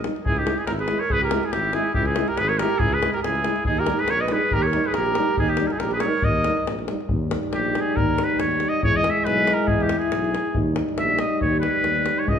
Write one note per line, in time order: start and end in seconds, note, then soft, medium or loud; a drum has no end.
0.04 0.13 G3 soft
0.04 0.14 D#4 medium
0.04 davul high medium
0.16 davul high soft
0.25 0.49 C#2 medium
0.25 0.40 E4 medium
0.25 0.39 G#4 medium
0.25 davul low medium
0.37 0.63 D#4 medium
0.37 0.60 G4 medium
0.37 davul high soft
0.45 0.54 G#3 medium
0.45 0.55 E4 medium
0.45 davul high medium
0.58 0.70 E4 medium
0.58 0.66 G#4 medium
0.58 davul high soft
0.66 0.92 G#1 medium
0.66 0.72 A#4 medium
0.66 davul high medium
0.71 0.76 E4 medium
0.79 1.02 G#4 medium
0.79 1.01 B4 medium
0.79 davul high soft
0.88 0.98 G#3 medium
0.88 0.98 E4 medium
0.88 davul high medium
0.99 1.12 A#4 medium
0.99 1.14 C#5 medium
1.10 1.35 C#2 medium
1.10 1.21 G#4 medium
1.10 1.23 B4 loud
1.10 davul low medium
1.22 1.45 G4 medium
1.22 1.47 A#4 medium
1.22 davul high soft
1.31 1.41 G#3 medium
1.31 1.41 E4 medium
1.31 davul high medium
1.43 1.53 E4 medium
1.43 1.53 G#4 medium
1.43 davul high soft
1.52 1.78 G#1 medium
1.52 1.75 E4 medium
1.52 1.76 G4 loud
1.52 davul high medium
1.65 davul high soft
1.73 1.83 G#3 medium
1.73 1.82 E4 medium
1.73 1.94 E4 medium
1.73 1.94 G#4 medium
1.73 davul high medium
1.94 2.20 C#2 loud
1.94 2.08 E4 medium
1.94 2.08 G4 medium
1.94 davul low medium
2.06 2.30 E4 medium
2.06 2.29 G#4 medium
2.06 davul high soft
2.16 2.26 G#3 medium
2.16 2.26 E4 medium
2.16 davul high medium
2.28 2.41 G4 medium
2.28 2.39 A#4 medium
2.28 davul high soft
2.37 2.63 G#1 medium
2.37 2.51 G#4 medium
2.37 2.50 B4 loud
2.37 davul high medium
2.48 2.61 A#4 medium
2.48 2.60 C#5 medium
2.48 davul high soft
2.58 2.69 G#3 medium
2.58 2.69 E4 medium
2.58 2.83 G4 medium
2.58 2.80 A#4 medium
2.58 davul high medium
2.78 3.06 C#2 medium
2.78 2.94 E4 medium
2.78 2.95 G#4 medium
2.78 davul low loud
2.92 3.15 G#4 medium
2.92 3.12 B4 medium
2.92 davul high soft
3.02 3.12 G#3 medium
3.02 3.11 E4 medium
3.02 davul high medium
3.13 3.20 G4 medium
3.13 3.18 A#4 medium
3.13 davul high soft
3.23 3.49 C#2 medium
3.23 3.65 E4 medium
3.23 3.63 G#4 medium
3.23 davul high medium
3.35 davul high soft
3.44 3.54 G#3 medium
3.44 3.55 E4 medium
3.44 davul high medium
3.56 davul high soft
3.65 3.91 D#2 medium
3.65 3.82 D#4 medium
3.65 3.80 G#4 medium
3.65 davul low medium
3.77 4.02 G4 medium
3.77 4.01 A#4 medium
3.77 davul high soft
3.87 3.96 G3 medium
3.87 3.97 D#4 medium
3.87 davul high medium
3.99 4.12 G#4 medium
3.99 4.11 B4 medium
3.99 davul high soft
4.08 4.35 A#1 medium
4.08 4.24 A#4 medium
4.08 4.22 C#5 loud
4.08 davul high medium
4.20 4.35 B4 medium
4.20 4.33 D#5 medium
4.28 4.40 G3 medium
4.28 4.38 D#4 medium
4.28 4.55 B4 medium
4.28 davul high medium
4.34 4.55 G#4 medium
4.51 4.76 D#2 loud
4.51 4.68 G4 medium
4.51 4.64 A#4 loud
4.51 davul low medium
4.62 4.88 C#5 medium
4.62 davul high soft
4.67 4.89 A#4 medium
4.73 4.83 G3 medium
4.73 4.83 D#4 medium
4.73 davul high medium
4.84 4.99 G#4 medium
4.84 4.95 B4 medium
4.84 davul high soft
4.94 5.20 A#1 medium
4.94 5.39 G4 medium
4.94 5.38 A#4 loud
4.94 davul high medium
5.06 davul high soft
5.15 5.26 G3 medium
5.15 5.27 D#4 medium
5.15 davul high medium
5.37 5.62 D#2 medium
5.37 5.52 D#4 medium
5.37 5.50 G#4 loud
5.37 davul low medium
5.48 5.70 D#4 medium
5.48 5.69 G4 medium
5.48 davul high soft
5.57 5.68 G3 medium
5.57 5.69 D#4 medium
5.57 davul high medium
5.67 5.76 G4 soft
5.67 5.73 A#4 medium
5.67 davul high soft
5.72 5.85 E4 medium
5.72 5.81 G#4 medium
5.79 6.05 A#1 medium
5.79 5.92 A#4 medium
5.79 davul high medium
5.83 5.94 G4 medium
5.91 6.08 G#4 medium
5.91 6.02 B4 medium
5.91 davul high soft
6.00 6.12 G3 medium
6.00 6.26 C#5 medium
6.00 davul high medium
6.05 6.13 D#4 medium
6.05 6.26 A#4 medium
6.22 6.49 D#2 medium
6.22 6.67 D#5 medium
6.22 davul low medium
6.26 6.69 A#4 medium
6.35 davul high soft
6.44 6.55 G3 medium
6.44 6.56 D#4 medium
6.44 davul high medium
6.57 davul high soft
6.67 6.91 A#1 medium
6.67 davul high medium
6.79 davul high soft
6.88 6.98 G3 medium
6.88 6.98 D#4 soft
6.88 davul high medium
7.00 davul high soft
7.09 7.34 D#2 medium
7.09 8.79 G3 medium
7.09 8.80 D#4 medium
7.09 davul low medium
7.31 davul high medium
7.43 davul high soft
7.52 7.77 A#1 medium
7.52 7.82 G4 medium
7.52 davul high medium
7.65 davul high soft
7.75 davul high medium
7.80 7.97 G#4 medium
7.96 8.21 D#2 medium
7.96 8.25 A#4 medium
7.96 davul low medium
8.18 davul high medium
8.24 8.41 B4 medium
8.30 davul high soft
8.39 8.64 D#2 medium
8.39 8.70 C#5 medium
8.39 davul high medium
8.51 davul high soft
8.60 davul high medium
8.69 8.83 D#5 medium
8.83 9.07 E2 medium
8.83 10.35 G#3 medium
8.83 10.57 E4 medium
8.83 8.98 C#5 loud
8.83 davul low medium
8.96 9.11 D#5 loud
9.04 davul high medium
9.10 9.27 E5 medium
9.17 davul high soft
9.25 9.50 B1 medium
9.25 9.55 B4 loud
9.25 davul high medium
9.38 davul high soft
9.47 davul high medium
9.53 9.69 A#4 medium
9.67 9.94 E2 medium
9.67 9.83 G#4 medium
9.67 davul low medium
9.80 10.00 G4 medium
9.80 davul high soft
9.89 davul high medium
9.98 10.63 G#4 medium
9.98 davul high soft
10.12 10.36 B1 medium
10.12 davul high medium
10.24 davul high soft
10.35 davul high medium
10.46 davul high soft
10.55 10.79 D#2 medium
10.55 12.27 G3 medium
10.55 12.28 D#4 medium
10.55 davul low medium
10.76 davul high medium
10.89 davul high soft
10.98 11.23 A#1 medium
10.98 11.21 E5 medium
10.98 davul high medium
11.10 davul high soft
11.19 11.40 D#5 medium
11.19 davul high medium
11.41 11.66 D#2 medium
11.41 11.59 C#5 medium
11.41 davul low medium
11.60 12.20 B4 medium
11.60 davul high medium
11.75 davul high soft
11.84 12.08 D#2 medium
11.84 davul high medium
11.96 davul high soft
12.06 davul high medium
12.19 12.30 C#5 medium
12.26 12.39 C#2 medium
12.26 12.39 G#3 medium
12.26 12.39 E4 medium
12.26 12.39 D#5 medium
12.26 davul low medium